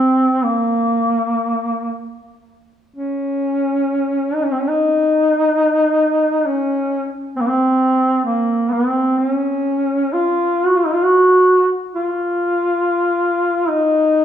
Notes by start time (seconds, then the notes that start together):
Already playing: C4
0.44 A#3
2.96 C#4
4.34 D#4
4.44 C#4
4.52 C4
4.60 C#4
4.69 D#4
6.46 C#4
7.36 C4
7.41 A#3
7.49 C4
8.25 A#3
8.72 C4
9.18 C4
9.29 C#4
10.13 F4
10.66 F#4
10.77 F4
10.86 D#4
10.94 F4
11.03 F#4
11.95 F4
13.69 D#4